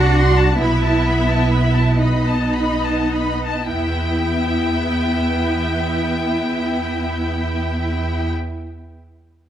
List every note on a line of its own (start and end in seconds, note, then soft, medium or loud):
0.00 0.60 C2 soft
0.00 0.59 D4 medium
0.00 0.59 F#4 medium
0.00 0.59 F#5 medium
0.00 0.17 A5 soft
0.18 0.37 C6 soft
0.38 0.59 A5 soft
0.59 3.38 B1 soft
0.59 1.96 B3 medium
0.59 1.96 E4 medium
0.59 1.96 E5 medium
0.59 0.80 B5 soft
0.84 1.05 A5 soft
1.06 1.28 B5 soft
1.29 1.51 A5 soft
1.51 1.73 B5 soft
1.75 1.99 A5 soft
1.98 3.66 B3 soft
1.98 3.70 D#4 soft
1.98 3.67 D#5 soft
1.98 2.23 B5 soft
2.27 2.53 A5 soft
2.54 2.82 B5 soft
2.82 3.12 A5 soft
3.13 3.40 B5 soft
3.44 3.71 A5 soft
3.70 8.30 E2 soft
3.70 8.30 B3 soft
3.70 8.30 E4 soft
3.70 8.31 E5 soft
3.70 8.30 G5 soft